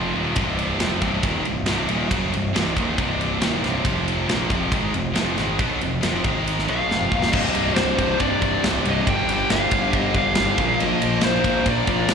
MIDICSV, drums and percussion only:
0, 0, Header, 1, 2, 480
1, 0, Start_track
1, 0, Key_signature, -3, "minor"
1, 0, Tempo, 434468
1, 403, Time_signature, 4, 2, 24, 8
1, 13413, End_track
2, 0, Start_track
2, 0, Title_t, "Drums"
2, 394, Note_on_c, 9, 51, 97
2, 402, Note_on_c, 9, 36, 123
2, 505, Note_off_c, 9, 51, 0
2, 513, Note_off_c, 9, 36, 0
2, 648, Note_on_c, 9, 51, 69
2, 758, Note_off_c, 9, 51, 0
2, 883, Note_on_c, 9, 51, 92
2, 887, Note_on_c, 9, 38, 112
2, 994, Note_off_c, 9, 51, 0
2, 998, Note_off_c, 9, 38, 0
2, 1123, Note_on_c, 9, 51, 75
2, 1125, Note_on_c, 9, 36, 85
2, 1234, Note_off_c, 9, 51, 0
2, 1235, Note_off_c, 9, 36, 0
2, 1359, Note_on_c, 9, 51, 97
2, 1362, Note_on_c, 9, 36, 112
2, 1469, Note_off_c, 9, 51, 0
2, 1473, Note_off_c, 9, 36, 0
2, 1605, Note_on_c, 9, 51, 58
2, 1716, Note_off_c, 9, 51, 0
2, 1833, Note_on_c, 9, 51, 100
2, 1838, Note_on_c, 9, 38, 117
2, 1944, Note_off_c, 9, 51, 0
2, 1948, Note_off_c, 9, 38, 0
2, 2084, Note_on_c, 9, 51, 74
2, 2194, Note_off_c, 9, 51, 0
2, 2331, Note_on_c, 9, 36, 112
2, 2335, Note_on_c, 9, 51, 108
2, 2441, Note_off_c, 9, 36, 0
2, 2445, Note_off_c, 9, 51, 0
2, 2580, Note_on_c, 9, 51, 75
2, 2691, Note_off_c, 9, 51, 0
2, 2825, Note_on_c, 9, 51, 93
2, 2829, Note_on_c, 9, 38, 121
2, 2935, Note_off_c, 9, 51, 0
2, 2940, Note_off_c, 9, 38, 0
2, 3056, Note_on_c, 9, 36, 89
2, 3068, Note_on_c, 9, 51, 73
2, 3167, Note_off_c, 9, 36, 0
2, 3179, Note_off_c, 9, 51, 0
2, 3295, Note_on_c, 9, 36, 118
2, 3297, Note_on_c, 9, 51, 95
2, 3405, Note_off_c, 9, 36, 0
2, 3407, Note_off_c, 9, 51, 0
2, 3544, Note_on_c, 9, 51, 64
2, 3654, Note_off_c, 9, 51, 0
2, 3773, Note_on_c, 9, 51, 96
2, 3777, Note_on_c, 9, 38, 123
2, 3883, Note_off_c, 9, 51, 0
2, 3888, Note_off_c, 9, 38, 0
2, 4021, Note_on_c, 9, 51, 67
2, 4025, Note_on_c, 9, 38, 31
2, 4131, Note_off_c, 9, 51, 0
2, 4136, Note_off_c, 9, 38, 0
2, 4252, Note_on_c, 9, 36, 115
2, 4258, Note_on_c, 9, 51, 96
2, 4363, Note_off_c, 9, 36, 0
2, 4369, Note_off_c, 9, 51, 0
2, 4506, Note_on_c, 9, 51, 71
2, 4617, Note_off_c, 9, 51, 0
2, 4743, Note_on_c, 9, 51, 91
2, 4747, Note_on_c, 9, 38, 104
2, 4853, Note_off_c, 9, 51, 0
2, 4858, Note_off_c, 9, 38, 0
2, 4974, Note_on_c, 9, 36, 95
2, 4984, Note_on_c, 9, 51, 70
2, 5084, Note_off_c, 9, 36, 0
2, 5094, Note_off_c, 9, 51, 0
2, 5213, Note_on_c, 9, 36, 103
2, 5216, Note_on_c, 9, 51, 89
2, 5323, Note_off_c, 9, 36, 0
2, 5326, Note_off_c, 9, 51, 0
2, 5459, Note_on_c, 9, 51, 62
2, 5569, Note_off_c, 9, 51, 0
2, 5695, Note_on_c, 9, 51, 97
2, 5700, Note_on_c, 9, 38, 109
2, 5806, Note_off_c, 9, 51, 0
2, 5810, Note_off_c, 9, 38, 0
2, 5941, Note_on_c, 9, 51, 67
2, 5945, Note_on_c, 9, 38, 32
2, 6051, Note_off_c, 9, 51, 0
2, 6056, Note_off_c, 9, 38, 0
2, 6176, Note_on_c, 9, 51, 101
2, 6178, Note_on_c, 9, 36, 117
2, 6287, Note_off_c, 9, 51, 0
2, 6288, Note_off_c, 9, 36, 0
2, 6423, Note_on_c, 9, 51, 74
2, 6533, Note_off_c, 9, 51, 0
2, 6661, Note_on_c, 9, 51, 108
2, 6665, Note_on_c, 9, 38, 109
2, 6771, Note_off_c, 9, 51, 0
2, 6776, Note_off_c, 9, 38, 0
2, 6896, Note_on_c, 9, 51, 76
2, 6900, Note_on_c, 9, 36, 107
2, 7006, Note_off_c, 9, 51, 0
2, 7010, Note_off_c, 9, 36, 0
2, 7153, Note_on_c, 9, 51, 99
2, 7263, Note_off_c, 9, 51, 0
2, 7278, Note_on_c, 9, 38, 38
2, 7385, Note_on_c, 9, 51, 57
2, 7389, Note_off_c, 9, 38, 0
2, 7495, Note_off_c, 9, 51, 0
2, 7637, Note_on_c, 9, 38, 64
2, 7742, Note_on_c, 9, 47, 59
2, 7748, Note_off_c, 9, 38, 0
2, 7852, Note_off_c, 9, 47, 0
2, 7863, Note_on_c, 9, 36, 82
2, 7974, Note_off_c, 9, 36, 0
2, 7981, Note_on_c, 9, 38, 79
2, 8091, Note_off_c, 9, 38, 0
2, 8096, Note_on_c, 9, 49, 127
2, 8104, Note_on_c, 9, 36, 120
2, 8206, Note_off_c, 9, 49, 0
2, 8215, Note_off_c, 9, 36, 0
2, 8338, Note_on_c, 9, 51, 86
2, 8449, Note_off_c, 9, 51, 0
2, 8574, Note_on_c, 9, 51, 101
2, 8579, Note_on_c, 9, 38, 125
2, 8685, Note_off_c, 9, 51, 0
2, 8689, Note_off_c, 9, 38, 0
2, 8823, Note_on_c, 9, 36, 99
2, 8823, Note_on_c, 9, 51, 87
2, 8933, Note_off_c, 9, 36, 0
2, 8933, Note_off_c, 9, 51, 0
2, 9056, Note_on_c, 9, 51, 100
2, 9062, Note_on_c, 9, 36, 81
2, 9167, Note_off_c, 9, 51, 0
2, 9173, Note_off_c, 9, 36, 0
2, 9300, Note_on_c, 9, 51, 74
2, 9302, Note_on_c, 9, 36, 81
2, 9411, Note_off_c, 9, 51, 0
2, 9412, Note_off_c, 9, 36, 0
2, 9543, Note_on_c, 9, 51, 112
2, 9548, Note_on_c, 9, 38, 117
2, 9654, Note_off_c, 9, 51, 0
2, 9658, Note_off_c, 9, 38, 0
2, 9782, Note_on_c, 9, 51, 79
2, 9893, Note_off_c, 9, 51, 0
2, 10021, Note_on_c, 9, 36, 127
2, 10025, Note_on_c, 9, 51, 115
2, 10132, Note_off_c, 9, 36, 0
2, 10136, Note_off_c, 9, 51, 0
2, 10261, Note_on_c, 9, 51, 96
2, 10372, Note_off_c, 9, 51, 0
2, 10495, Note_on_c, 9, 51, 118
2, 10500, Note_on_c, 9, 38, 109
2, 10606, Note_off_c, 9, 51, 0
2, 10610, Note_off_c, 9, 38, 0
2, 10730, Note_on_c, 9, 51, 90
2, 10735, Note_on_c, 9, 36, 96
2, 10840, Note_off_c, 9, 51, 0
2, 10846, Note_off_c, 9, 36, 0
2, 10972, Note_on_c, 9, 51, 102
2, 10974, Note_on_c, 9, 36, 85
2, 11082, Note_off_c, 9, 51, 0
2, 11084, Note_off_c, 9, 36, 0
2, 11207, Note_on_c, 9, 51, 65
2, 11209, Note_on_c, 9, 36, 83
2, 11318, Note_off_c, 9, 51, 0
2, 11319, Note_off_c, 9, 36, 0
2, 11437, Note_on_c, 9, 51, 109
2, 11441, Note_on_c, 9, 38, 121
2, 11547, Note_off_c, 9, 51, 0
2, 11551, Note_off_c, 9, 38, 0
2, 11686, Note_on_c, 9, 51, 71
2, 11689, Note_on_c, 9, 36, 102
2, 11797, Note_off_c, 9, 51, 0
2, 11800, Note_off_c, 9, 36, 0
2, 11934, Note_on_c, 9, 51, 102
2, 12045, Note_off_c, 9, 51, 0
2, 12172, Note_on_c, 9, 51, 90
2, 12282, Note_off_c, 9, 51, 0
2, 12387, Note_on_c, 9, 51, 112
2, 12392, Note_on_c, 9, 38, 112
2, 12498, Note_off_c, 9, 51, 0
2, 12502, Note_off_c, 9, 38, 0
2, 12643, Note_on_c, 9, 36, 96
2, 12645, Note_on_c, 9, 51, 83
2, 12753, Note_off_c, 9, 36, 0
2, 12756, Note_off_c, 9, 51, 0
2, 12882, Note_on_c, 9, 36, 94
2, 12882, Note_on_c, 9, 51, 103
2, 12992, Note_off_c, 9, 36, 0
2, 12993, Note_off_c, 9, 51, 0
2, 13117, Note_on_c, 9, 51, 66
2, 13119, Note_on_c, 9, 36, 80
2, 13227, Note_off_c, 9, 51, 0
2, 13229, Note_off_c, 9, 36, 0
2, 13351, Note_on_c, 9, 51, 104
2, 13355, Note_on_c, 9, 38, 127
2, 13413, Note_off_c, 9, 38, 0
2, 13413, Note_off_c, 9, 51, 0
2, 13413, End_track
0, 0, End_of_file